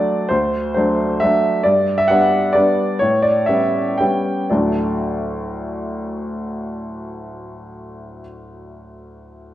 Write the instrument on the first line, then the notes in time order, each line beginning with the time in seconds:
upright piano
Already playing: F#3 A3 D4 D5
0.29 D2 C5
0.74 F#3 A3 D4 C5
1.20 F#3 A3 D4 E5
1.63 G2 D5
1.98 E5
2.08 G3 B3 D4 F#5
2.53 G3 B3 D4 D5
2.99 A2 C#5
3.22 D5
3.46 G3 B3 C#4 E5
3.98 G3 B3 C#4 G5
4.50 D2 A2 F#3 A3 D4 F#4 D5